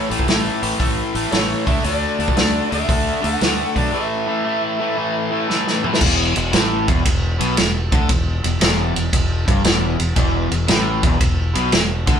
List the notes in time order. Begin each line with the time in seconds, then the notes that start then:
Already playing: A3
0.10 A1 A2 E3 A3, open hi-hat
0.19 kick
0.27 A1 A2 E3 A3, snare, open hi-hat
0.62 A1 A2 E3 A3, open hi-hat
0.79 A1 A2 E3 A3, kick, open hi-hat
1.14 A1 A2 E3 A3, open hi-hat
1.31 A1 A2 E3 A3 E4 C#5, snare, open hi-hat
1.66 D2 D3 A3 D4 A4 E5, kick, open hi-hat
1.84 D2 D3 A3 D4 F#4 D5, open hi-hat
2.19 D2 D3 A3 D4, open hi-hat
2.28 kick
2.35 D2 D3 A3 D4, snare, open hi-hat
2.70 D2 D3 A3 D4 A4 E5, open hi-hat
2.88 D2 D3 A3 D4, kick, open hi-hat
3.21 D2 D3 A3 D4 A4, open hi-hat
3.25 F#5
3.40 D2 D3 A3 D4, snare, open hi-hat
3.75 B1 D3 A3 D4 F#4 D5, kick, open hi-hat
3.91 A2 E3 A3 A4 E5
4.26 A2 E3 A3
4.44 A2 E3 A3
4.80 A2 E3 A3
4.97 A2 E3 A3
5.31 A2 E3 A3
5.48 A2 E3 A3, snare
5.67 snare
5.83 A2 E3 A3, mid tom
5.93 snare
6.01 E1 E2, kick, crash
6.36 E1 E2, ride
6.52 A1 A2, snare, ride
6.88 E1 E2, kick, ride
7.05 E1 E2, kick, ride
7.40 B1 B2, ride
7.57 E1 E2, snare, ride
7.92 D2 D3, kick, ride
8.09 E1 E2, kick, ride
8.44 E1 E2, ride
8.61 E1 E2, snare, ride
8.96 E1 E2, ride
9.13 E1 E2, kick, ride
9.48 G1 G2, kick, ride
9.64 E1 E2, snare, ride
9.99 E1 E2, ride
10.16 E1 E2, kick, ride
10.51 E1 E2, ride
10.68 A1 A2, snare, ride
11.03 E1 E2, kick, ride
11.21 E1 E2, kick, ride
11.55 B1 B2, ride
11.72 E1 E2, snare, ride
12.07 D2 D3, kick, ride